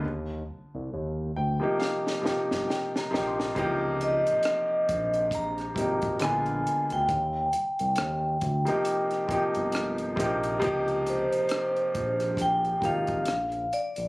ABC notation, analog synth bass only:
X:1
M:4/4
L:1/16
Q:"Swing 16ths" 1/4=68
K:Eb
V:1 name="Analog synth bass" clef=bass
E,,2 C,, C,, E,,2 D,, z3 G,,, G,,, z2 B,,,2 | _D,,3 B,,, z2 B,,,4 A,,,2 B,,,2 z =D,, | E,,2 C,, C,, E,,2 D,, z3 G,,, G,,,3 B,,,2 | _D,,3 B,,, z2 B,,,4 A,,,2 B,,,2 z B,,, |]